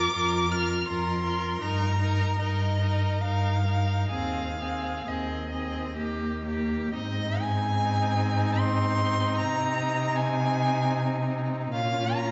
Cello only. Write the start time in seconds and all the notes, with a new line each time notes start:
0.12 F2
0.88 F2
1.62 G2
2.40 G2
3.23 G2
4.12 D#2
5.06 D#2
5.99 D#2
6.95 G#2
9.40 C3
11.74 A#2